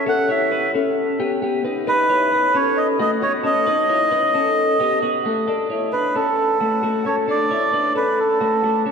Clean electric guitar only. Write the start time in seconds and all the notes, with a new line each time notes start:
0.06 C#4 A4
0.29 E4 C#5
0.51 E4 B4
0.75 C#4 A4
1.20 B3 G4
1.42 B3 G4
1.65 D#4 B4
1.87 D#4 B4
2.10 E4 C#5
2.32 D#4 B4
2.54 C#4 A4
2.99 A3 F#4
3.22 B3 F#4
3.44 C#4 A4
3.67 D#4 B4
3.89 E4 C#5
4.11 D#4 B4
4.34 C#4 A4
4.80 B3 G4
5.02 B3 F#4
5.25 A3 F#4
5.48 D4 A4
5.70 E4 C#5
5.93 D4 B4
6.15 C#4 A4
6.61 A3 F#4
6.83 A3 F#4
7.05 C#4 A4
7.28 D4 A4
7.51 E4 C#5
7.73 D4 B4
7.95 C#4 A4
8.41 A3 F#4
8.63 A3 F#4
8.86 C#4 A4